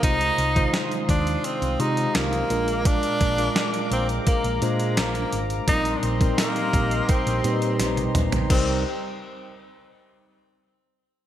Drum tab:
CC |----------------|----------------|----------------|x---------------|
HH |xxxxxxxxxxxxxxxx|xxxxxxxxxxxxxxxx|xxxxxxxxxxxxxxxx|----------------|
TB |----------------|----------------|----x-----------|----------------|
SD |----o-------o---|----o-------o---|----o-------o---|----------------|
T1 |----------------|----------------|-------------o--|----------------|
T2 |----------------|----------------|--------------o-|----------------|
FT |----------------|----------------|---------------o|----------------|
BD |o--o--o---------|o-o-----o-------|o--o--o-o-------|o---------------|